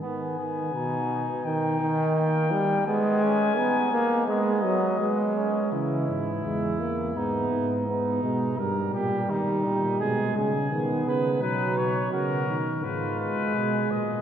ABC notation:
X:1
M:4/4
L:1/8
Q:1/4=84
K:G#m
V:1 name="Trumpet"
g4 =g2 g2 | g4 d4 | z8 | z8 |
[K:Cblyd] =B d _B2 c c2 e |]
V:2 name="Flugelhorn"
B, B, D2 D2 A,2 | B, C D2 B,2 B, C | E4 D2 D2 | A =G D2 ^G G2 B |
[K:Cblyd] ^D2 ^F z =F2 A2 |]
V:3 name="Trombone" clef=bass
D, D, B,,2 D, D,2 =G, | G,2 B, A, G, F, G,2 | E,2 G, A, B,2 B, G, | =G,4 ^G,2 B,2 |
[K:Cblyd] ^F,3 z A,4 |]
V:4 name="Bass trombone" clef=bass
z8 | z8 | C, G,, E,,2 G,, G,,2 B,, | =G,, A,, D, A,, B,, C, D, C, |
[K:Cblyd] =B,,2 D, ^D, A,, z C, _B,, |]